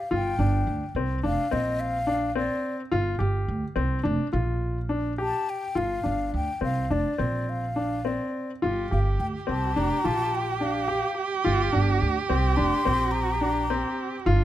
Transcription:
Already playing: F5
0.11 G1 F4 G5
0.39 G1 D4
0.67 D2
0.95 C2 C4
1.23 F1 D4 F5
1.51 A#1 C4 D#5
1.80 F5
2.07 D4
2.35 C4 D5
2.92 G1 F4
3.19 G1 G4
3.48 D2
3.76 C2 C4
4.03 F1 D4
4.33 A#1 F4
4.89 D4
5.18 G4 A5
5.49 G5
5.75 G1 F4 F5
6.03 G1 D4
6.34 D2 G5
6.61 C2 C4 F5
6.90 F1 D4 D5
7.18 A#1 C4
7.49 F5
7.76 D4
8.05 C4 D5
8.62 G1 F4 G4
8.91 G1 G4 F5
9.20 D2 G5
9.47 C2 C4 A5
9.76 F1 D4 A#5
10.04 A#1 F4 A5
10.35 G5
10.61 D4 F5
10.88 G4
11.44 G1 F4
11.72 G1 D4
12.02 D2
12.29 C2 C4 G5
12.57 F1 D4 C6
12.85 A#1 C4
13.11 A#5
13.41 D4
13.70 C4
14.26 G1 D4 F4

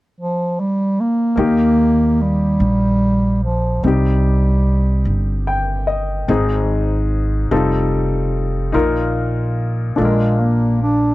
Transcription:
0.20 F3
0.60 G3
1.00 A#3
1.36 D#2 D#3 A#3 D#4 G4
1.41 A#3
2.22 G3
2.60 A#1
3.44 F3
3.84 C2 C3 G3 C4 D#4 G4
5.05 G1
5.47 G5
5.87 D#5
6.28 G#1 G#2 C4 D#4 G#4
7.51 F1 G3 C4 D#4 F4 A4
8.72 A#1 A#2 D#4 F4 A#4
9.96 A#1 A#2 G#3 D4 F4 A4
10.05 A#4
10.40 A#3
10.82 D4

